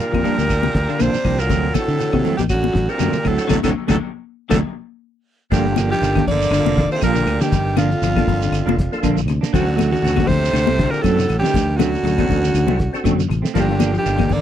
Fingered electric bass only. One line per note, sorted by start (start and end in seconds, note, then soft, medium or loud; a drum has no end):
0.14 0.23 F2 medium
0.27 muted fingered electric bass stroke soft
0.38 0.68 D2 medium
0.75 0.86 D2 medium
1.01 1.12 A#1 medium
1.14 muted fingered electric bass stroke soft
1.25 1.50 C2 medium
1.50 1.70 D2 medium
1.88 1.98 D3 medium
2.13 2.23 C3 medium
2.25 muted fingered electric bass stroke soft
2.39 2.69 A1 medium
2.75 2.87 A1 medium
3.00 3.12 F#2 medium
3.13 muted fingered electric bass stroke soft
3.25 3.36 D2 medium
3.51 3.61 D2 medium
3.64 3.73 D2 loud
3.90 3.98 D2 medium
4.52 4.62 D2 medium
5.52 5.93 G1 loud
6.01 6.22 G1 medium
6.28 6.48 G1 medium
6.51 6.62 G1 loud
6.65 6.86 F1 medium
7.02 7.23 A#1 medium
7.26 7.38 D2 loud
7.52 7.93 G1 loud
8.02 8.23 G1 loud
8.27 8.48 G1 medium
8.52 8.63 G1 medium
8.66 8.87 F1 medium
9.03 9.24 A#1 medium
9.26 9.38 D2 loud
9.54 9.95 D2 loud
10.03 10.23 D2 medium
10.29 10.50 D2 medium
10.53 10.65 D2 loud
10.68 10.88 C2 medium
11.04 11.25 F#2 medium
11.30 11.41 A1 loud
11.55 11.96 D2 loud
12.03 12.24 D2 medium
12.29 12.49 D2 medium
12.54 12.66 D2 medium
12.67 12.88 C2 medium
13.05 13.25 F#2 medium
13.30 13.41 A1 loud
13.56 13.97 G1 loud
14.06 14.26 G1 medium
14.31 14.41 G1 medium